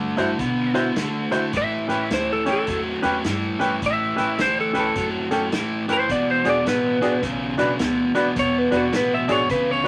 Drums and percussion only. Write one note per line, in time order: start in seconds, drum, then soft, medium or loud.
0.18 snare soft
0.18 closed hi-hat medium
0.39 kick loud
0.39 snare soft
0.39 closed hi-hat medium
0.75 snare soft
0.75 closed hi-hat medium
0.96 snare loud
0.96 closed hi-hat medium
1.32 snare soft
1.32 closed hi-hat medium
1.53 kick loud
1.53 snare soft
1.53 closed hi-hat medium
1.89 snare soft
1.89 closed hi-hat medium
2.10 snare loud
2.10 closed hi-hat medium
2.46 snare soft
2.46 closed hi-hat medium
2.67 kick loud
2.67 snare soft
2.67 closed hi-hat medium
3.03 snare soft
3.03 closed hi-hat medium
3.24 snare loud
3.24 closed hi-hat medium
3.61 snare soft
3.61 closed hi-hat medium
3.82 kick loud
3.82 snare soft
3.82 closed hi-hat medium
4.18 snare soft
4.18 closed hi-hat medium
4.38 snare loud
4.38 closed hi-hat medium
4.75 snare soft
4.75 closed hi-hat medium
4.95 kick loud
4.95 snare soft
4.95 closed hi-hat medium
5.31 snare soft
5.31 closed hi-hat medium
5.52 snare loud
5.52 closed hi-hat medium
5.89 snare soft
5.89 closed hi-hat medium
6.09 kick loud
6.09 snare soft
6.09 closed hi-hat medium
6.45 snare soft
6.45 closed hi-hat medium
6.66 snare loud
6.66 closed hi-hat medium
7.02 snare soft
7.02 closed hi-hat medium
7.23 kick loud
7.23 snare soft
7.23 closed hi-hat medium
7.59 snare soft
7.59 closed hi-hat medium
7.79 snare loud
7.79 closed hi-hat medium
8.15 snare soft
8.15 closed hi-hat medium
8.36 kick loud
8.36 snare soft
8.36 closed hi-hat medium
8.72 snare soft
8.72 closed hi-hat medium
8.93 snare loud
8.93 closed hi-hat medium
9.29 snare soft
9.29 closed hi-hat medium
9.49 kick loud
9.49 snare soft
9.49 closed hi-hat medium